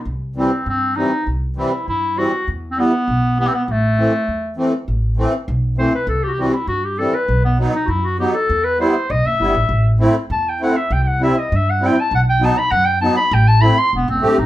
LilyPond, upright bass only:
\new Staff \with { instrumentName = "Upright bass" } { \clef bass \time 2/4 \tempo 4 = 100 c,4 g,4 | c,4 g,4 | e,4 b,,4 | a,,4 e,4 |
a,,4 b,,4 | c,4 g,4 | b,,4 fis,4 | e,4 b,,16 fis,,16 g,,16 a,,16 |
a,,4 e,4 | c,4 g,4 | b,,4 fis,4 | a,,4 e,,16 fis,,16 g,,16 a,,16 | }